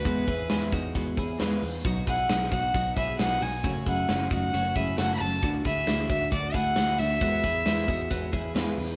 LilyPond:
<<
  \new Staff \with { instrumentName = "Violin" } { \time 4/4 \key e \major \tempo 4 = 134 b'4. r2 r8 | r8 fis''4 fis''4 e''8 fis''8 gis''8 | r8 fis''4 fis''4 e''8 fis''16. b''32 a''8 | r8 e''4 e''8 d''8 fis''4 e''8~ |
e''2. r4 | }
  \new Staff \with { instrumentName = "Clean electric guitar" } { \time 4/4 \key e \major <b fis'>8 <e' gis'>8 <e' gis'>8 <dis' fis'>8 <b fis'>8 <e' gis'>8 <gis' b'>4 | <dis' fis'>8 <e' gis'>8 <dis' gis'>8 <dis' fis'>8 <dis' fis'>8 <e' gis'>8 <dis' gis'>8 <dis' fis'>8 | <cis' fis'>8 <e' gis'>8 <cis' gis'>8 <dis' fis'>8 <cis' fis'>8 <e' gis'>8 <fis' a'>4 | <d' fis'>8 <e' gis'>8 <e' gis'>8 <d' fis'>8 <d' fis'>8 <e' gis'>8 <e' gis'>8 <d' fis'>8 |
<b fis'>8 <e' gis'>8 <e' gis'>8 <dis' fis'>8 <b fis'>8 <e' gis'>8 <gis' b'>4 | }
  \new Staff \with { instrumentName = "Steel-string acoustic guitar" } { \time 4/4 \key e \major <e gis b e' gis'>8 <b gis'>8 <e gis b e' gis'>8 <b e' gis'>8 <gis b e' gis'>8 <b e' gis'>8 <e gis b e' gis'>8 <e' gis'>8 | <b, fis b dis' fis'>8 <b dis' fis'>8 <b, fis b dis' fis'>8 <b dis' fis'>8 <fis b dis' fis'>8 <b dis' fis'>8 <b, fis b dis' fis'>8 <b dis' fis'>8 | <fis, cis fis a cis' fis'>8 <fis a cis' fis'>8 <fis, cis fis a cis' fis'>8 <fis a cis' fis'>8 <fis a cis' fis'>8 <fis a cis' fis'>8 <fis, cis fis a cis' fis'>8 <fis a cis' fis'>8 | <d e a d' fis'>8 <a d' fis'>8 <d e a d' fis'>8 <a fis'>8 <e a d' fis'>8 <a d' fis'>8 <d e a d' fis'>8 <a d' fis'>8 |
<e gis b e' gis'>8 <b e' gis'>8 <e gis b e' gis'>8 <b e' gis'>8 <gis b e' gis'>8 <b e' gis'>8 <e gis b e' gis'>8 <b e' gis'>8 | }
  \new Staff \with { instrumentName = "Picked electric bass" } { \clef bass \time 4/4 \key e \major e,8 e,8 e,8 e,8 e,8 e,8 e,8 e,8 | b,,8 b,,8 b,,8 b,,8 b,,8 b,,8 b,,8 b,,8 | fis,,8 fis,,8 fis,,8 fis,,8 fis,,8 fis,,8 fis,,8 fis,,8 | d,8 d,8 d,8 d,8 d,8 d,8 d,8 d,8 |
e,8 e,8 e,8 e,8 e,8 e,8 e,8 e,8 | }
  \new DrumStaff \with { instrumentName = "Drums" } \drummode { \time 4/4 <hh bd>8 <hh bd>8 <hh sn>8 <hh bd>8 <hh bd>8 <hh bd>8 <hh sn>8 hho8 | <hh bd>8 <hh bd>8 <hh sn>8 <hh bd>8 <hh bd>8 <hh bd>8 <hh sn>8 hho8 | <hh bd>8 <hh bd>8 <hh sn>8 <hh bd>8 hh8 <hh bd>8 <hh sn>8 hho8 | <hh bd>8 <hh bd>8 <hh sn>8 <hh bd>8 <hh bd>8 <hh bd>8 <hh sn>8 hho8 |
<hh bd>8 <hh bd>8 <hh sn>8 <hh bd>8 <hh bd>8 <hh bd>8 <hh sn>8 hho8 | }
>>